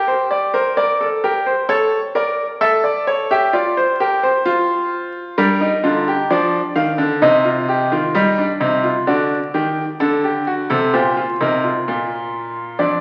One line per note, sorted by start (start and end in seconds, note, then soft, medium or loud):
0.00 0.53 G4 loud
0.08 0.31 C5 medium
0.31 0.54 D5 medium
0.54 0.75 A#4 medium
0.54 0.77 C5 medium
0.77 1.00 A#4 medium
0.77 1.06 D5 medium
1.01 1.23 A4 medium
1.24 1.52 G4 medium
1.24 1.46 A#4 medium
1.46 1.69 C5 medium
1.69 1.98 A4 loud
1.69 1.98 C#5 medium
2.15 2.44 A#4 medium
2.15 2.44 D5 medium
2.61 3.28 A4 loud
2.61 2.84 E5 medium
2.84 3.07 D5 medium
3.07 3.30 C#5 medium
3.31 3.53 G4 loud
3.31 3.53 E5 medium
3.53 3.82 F4 medium
3.53 3.76 D5 medium
3.77 4.00 C5 medium
4.00 4.29 G4 medium
4.00 4.23 A#4 medium
4.23 5.35 C5 medium
4.46 5.35 F4 loud
5.38 5.67 G3 loud
5.38 5.60 D4 medium
5.38 6.28 A#4 medium
5.61 5.83 D#4 medium
5.84 6.12 D3 medium
5.84 6.06 F4 medium
6.08 6.30 G4 medium
6.30 6.59 F3 loud
6.30 7.20 D4 medium
6.30 6.59 D5 medium
6.76 6.98 D#3 medium
6.76 7.04 F5 medium
6.98 7.21 D3 medium
7.22 7.89 C3 loud
7.22 7.44 D#4 medium
7.22 9.03 D#5 medium
7.45 7.68 F4 medium
7.69 7.91 G4 medium
7.92 8.14 D#3 medium
7.92 8.14 F4 medium
8.15 8.43 G3 medium
8.15 8.37 D#4 medium
8.38 8.60 D4 medium
8.60 8.89 C3 medium
8.60 8.83 D#4 medium
8.84 9.06 F4 medium
9.07 9.36 D3 medium
9.07 9.36 F#4 medium
9.07 10.88 D5 medium
9.54 9.83 D#3 medium
9.54 9.82 G4 medium
10.00 10.67 D3 medium
10.00 10.22 A4 medium
10.24 10.46 G4 medium
10.47 10.69 F#4 medium
10.70 10.92 C3 medium
10.70 10.92 A4 medium
10.93 11.22 A#2 medium
10.93 11.15 G4 medium
10.93 11.22 C5 medium
11.17 11.39 F4 medium
11.41 11.69 C3 medium
11.41 11.62 D#4 medium
11.41 12.75 A#4 medium
11.64 12.75 F4 medium
11.88 12.77 A#2 medium
12.79 13.01 F2 medium
12.79 13.01 D4 medium
12.79 13.01 D5 medium